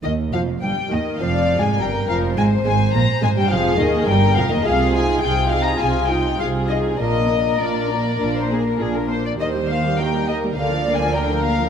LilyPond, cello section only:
\new Staff \with { instrumentName = "Cello section" } { \clef bass \time 4/4 \key ees \major \tempo 4 = 103 ees,8 f,8 g,8 ees,8 \tuplet 3/2 { f,4 aes,8 } g,8 f,8 | aes,8 aes,8 bes,8 aes,16 g,16 f,8 ees,8 g,8 f,16 ees,16 | c4 c4 c4 c4 | bes,4 bes,4 bes,4 bes,4 |
ees2 d2 | }